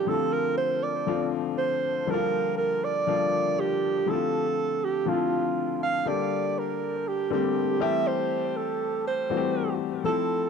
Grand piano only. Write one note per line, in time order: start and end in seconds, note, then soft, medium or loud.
0.00 0.07 D3 medium
0.00 0.07 F3 medium
0.07 0.91 D3 medium
0.07 0.91 F3 medium
0.07 0.92 A3 medium
0.07 0.92 C4 medium
0.07 0.14 E4 medium
0.14 0.95 F4 medium
1.06 1.91 D3 medium
1.06 1.91 F3 medium
1.06 1.92 A3 medium
1.06 1.92 C4 medium
1.06 1.92 F4 medium
2.06 2.91 D3 medium
2.06 2.91 F3 medium
2.06 2.91 G3 medium
2.06 2.92 A#3 medium
2.06 2.14 E4 medium
2.14 2.95 F4 medium
3.07 3.91 D3 medium
3.07 3.91 F3 medium
3.07 3.91 G3 medium
3.07 3.91 A#3 medium
3.07 3.92 F4 medium
4.06 4.90 D3 medium
4.06 4.91 F3 medium
4.06 4.91 A3 medium
4.06 4.91 C4 medium
4.06 4.13 E4 medium
4.13 4.94 F4 medium
5.06 5.90 D3 medium
5.06 5.91 F3 medium
5.06 5.91 A3 medium
5.06 5.91 C4 medium
5.06 5.13 E4 medium
5.13 5.94 F4 medium
6.05 6.90 D3 medium
6.05 6.90 G3 medium
6.05 6.90 A#3 medium
6.05 6.91 G4 medium
7.30 7.80 D3 medium
7.30 7.79 G3 medium
7.30 7.79 A3 medium
7.30 7.81 A#3 medium
7.30 7.80 C4 medium
7.80 8.64 E3 medium
7.80 8.64 G3 medium
7.80 8.65 A3 medium
7.80 8.65 C4 medium
7.80 8.65 G4 loud
9.30 9.93 E3 medium
9.30 9.93 G3 medium
9.30 9.94 A3 medium
9.30 9.94 C4 medium
9.30 9.37 F#4 medium
9.37 9.97 G4 medium
10.04 10.49 F3 medium
10.04 10.49 A3 medium
10.04 10.49 C4 medium
10.04 10.49 E4 medium
10.04 10.49 A4 medium